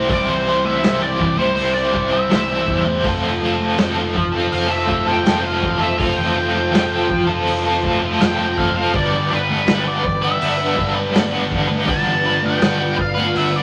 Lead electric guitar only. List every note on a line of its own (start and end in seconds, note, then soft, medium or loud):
0.12 0.29 D5 medium
0.30 0.67 C5 medium
0.65 1.02 E5 medium
1.02 1.38 D5 medium
1.39 1.55 C5 medium
1.56 1.74 C5 medium
1.74 2.09 D5 medium
2.12 2.82 E5 medium
4.52 4.71 F5 medium
4.71 5.09 E5 medium
5.07 5.45 G5 loud
5.44 5.81 F5 medium
5.81 5.99 E5 medium
5.99 6.17 F5 medium
6.16 6.52 G5 medium
6.53 7.24 G5 medium
8.21 8.58 G5 loud
8.57 8.75 F5 loud
8.76 8.96 F5 loud
8.96 9.33 D5 loud
9.33 9.89 B4 medium
9.87 10.23 D5 medium
10.24 10.93 E5 medium
11.89 12.45 A5 loud
12.46 12.96 G5 loud
13.01 13.37 F5 loud
13.37 13.56 E5 medium
13.56 13.63 D5 medium